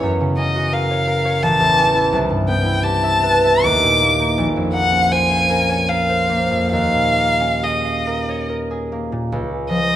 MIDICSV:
0, 0, Header, 1, 3, 480
1, 0, Start_track
1, 0, Tempo, 705882
1, 12, Time_signature, 3, 2, 24, 8
1, 1932, Tempo, 802139
1, 2412, Tempo, 737101
1, 3372, Tempo, 777202
1, 3852, Tempo, 833333
1, 4332, Tempo, 884956
1, 5292, Tempo, 826446
1, 5772, Tempo, 757576
1, 6174, End_track
2, 0, Start_track
2, 0, Title_t, "Violin"
2, 0, Program_c, 0, 40
2, 254, Note_on_c, 0, 75, 61
2, 496, Note_on_c, 0, 77, 67
2, 506, Note_off_c, 0, 75, 0
2, 970, Note_on_c, 0, 81, 76
2, 980, Note_off_c, 0, 77, 0
2, 1449, Note_off_c, 0, 81, 0
2, 1690, Note_on_c, 0, 79, 65
2, 1925, Note_on_c, 0, 81, 78
2, 1935, Note_off_c, 0, 79, 0
2, 2407, Note_on_c, 0, 86, 74
2, 2416, Note_off_c, 0, 81, 0
2, 2887, Note_off_c, 0, 86, 0
2, 3125, Note_on_c, 0, 78, 72
2, 3371, Note_on_c, 0, 80, 70
2, 3380, Note_off_c, 0, 78, 0
2, 3850, Note_on_c, 0, 77, 70
2, 3858, Note_off_c, 0, 80, 0
2, 4321, Note_off_c, 0, 77, 0
2, 4324, Note_on_c, 0, 77, 82
2, 4824, Note_on_c, 0, 75, 56
2, 4832, Note_off_c, 0, 77, 0
2, 5291, Note_off_c, 0, 75, 0
2, 6012, Note_on_c, 0, 75, 72
2, 6174, Note_off_c, 0, 75, 0
2, 6174, End_track
3, 0, Start_track
3, 0, Title_t, "Harp"
3, 0, Program_c, 1, 46
3, 0, Note_on_c, 1, 61, 43
3, 0, Note_on_c, 1, 73, 45
3, 19, Note_on_c, 1, 42, 53
3, 140, Note_on_c, 1, 49, 37
3, 252, Note_off_c, 1, 61, 0
3, 260, Note_on_c, 1, 61, 42
3, 378, Note_on_c, 1, 66, 40
3, 492, Note_on_c, 1, 70, 45
3, 608, Note_off_c, 1, 73, 0
3, 617, Note_on_c, 1, 73, 47
3, 723, Note_off_c, 1, 70, 0
3, 731, Note_on_c, 1, 70, 48
3, 842, Note_off_c, 1, 73, 0
3, 851, Note_on_c, 1, 73, 43
3, 971, Note_on_c, 1, 33, 54
3, 988, Note_off_c, 1, 70, 0
3, 989, Note_off_c, 1, 42, 0
3, 989, Note_off_c, 1, 49, 0
3, 989, Note_off_c, 1, 66, 0
3, 1089, Note_on_c, 1, 40, 43
3, 1203, Note_off_c, 1, 61, 0
3, 1211, Note_on_c, 1, 61, 50
3, 1329, Note_on_c, 1, 64, 38
3, 1444, Note_on_c, 1, 36, 55
3, 1468, Note_off_c, 1, 40, 0
3, 1468, Note_off_c, 1, 61, 0
3, 1469, Note_off_c, 1, 33, 0
3, 1469, Note_off_c, 1, 73, 0
3, 1565, Note_on_c, 1, 43, 37
3, 1686, Note_on_c, 1, 59, 42
3, 1800, Note_off_c, 1, 64, 0
3, 1808, Note_on_c, 1, 64, 39
3, 1930, Note_on_c, 1, 67, 46
3, 2046, Note_on_c, 1, 76, 45
3, 2165, Note_on_c, 1, 71, 46
3, 2283, Note_off_c, 1, 76, 0
3, 2290, Note_on_c, 1, 76, 46
3, 2407, Note_on_c, 1, 39, 52
3, 2429, Note_off_c, 1, 36, 0
3, 2430, Note_off_c, 1, 43, 0
3, 2430, Note_off_c, 1, 59, 0
3, 2430, Note_off_c, 1, 71, 0
3, 2431, Note_off_c, 1, 64, 0
3, 2431, Note_off_c, 1, 76, 0
3, 2537, Note_on_c, 1, 46, 38
3, 2655, Note_on_c, 1, 58, 43
3, 2773, Note_on_c, 1, 63, 39
3, 2889, Note_on_c, 1, 34, 55
3, 2907, Note_off_c, 1, 39, 0
3, 2908, Note_off_c, 1, 67, 0
3, 2909, Note_off_c, 1, 46, 0
3, 2909, Note_off_c, 1, 63, 0
3, 3009, Note_on_c, 1, 41, 39
3, 3115, Note_off_c, 1, 58, 0
3, 3123, Note_on_c, 1, 58, 38
3, 3242, Note_on_c, 1, 61, 39
3, 3369, Note_on_c, 1, 72, 46
3, 3489, Note_on_c, 1, 77, 38
3, 3607, Note_on_c, 1, 70, 40
3, 3725, Note_on_c, 1, 73, 44
3, 3838, Note_off_c, 1, 70, 0
3, 3846, Note_on_c, 1, 70, 41
3, 3958, Note_off_c, 1, 72, 0
3, 3965, Note_on_c, 1, 72, 38
3, 4075, Note_off_c, 1, 58, 0
3, 4082, Note_on_c, 1, 58, 41
3, 4199, Note_off_c, 1, 41, 0
3, 4206, Note_on_c, 1, 41, 32
3, 4329, Note_on_c, 1, 39, 47
3, 4350, Note_off_c, 1, 34, 0
3, 4350, Note_off_c, 1, 72, 0
3, 4351, Note_off_c, 1, 41, 0
3, 4450, Note_on_c, 1, 46, 32
3, 4570, Note_off_c, 1, 58, 0
3, 4576, Note_on_c, 1, 58, 38
3, 4693, Note_off_c, 1, 61, 0
3, 4700, Note_on_c, 1, 61, 32
3, 4821, Note_on_c, 1, 68, 40
3, 4933, Note_off_c, 1, 77, 0
3, 4939, Note_on_c, 1, 77, 36
3, 5052, Note_off_c, 1, 70, 0
3, 5059, Note_on_c, 1, 70, 40
3, 5170, Note_off_c, 1, 73, 0
3, 5177, Note_on_c, 1, 73, 40
3, 5284, Note_off_c, 1, 70, 0
3, 5290, Note_on_c, 1, 70, 39
3, 5406, Note_off_c, 1, 68, 0
3, 5413, Note_on_c, 1, 68, 35
3, 5530, Note_off_c, 1, 58, 0
3, 5537, Note_on_c, 1, 58, 38
3, 5647, Note_off_c, 1, 46, 0
3, 5654, Note_on_c, 1, 46, 36
3, 5771, Note_on_c, 1, 37, 57
3, 5789, Note_off_c, 1, 39, 0
3, 5789, Note_off_c, 1, 46, 0
3, 5790, Note_off_c, 1, 70, 0
3, 5791, Note_off_c, 1, 58, 0
3, 6010, Note_on_c, 1, 53, 43
3, 6174, Note_off_c, 1, 37, 0
3, 6174, Note_off_c, 1, 53, 0
3, 6174, Note_off_c, 1, 61, 0
3, 6174, Note_off_c, 1, 68, 0
3, 6174, Note_off_c, 1, 73, 0
3, 6174, Note_off_c, 1, 77, 0
3, 6174, End_track
0, 0, End_of_file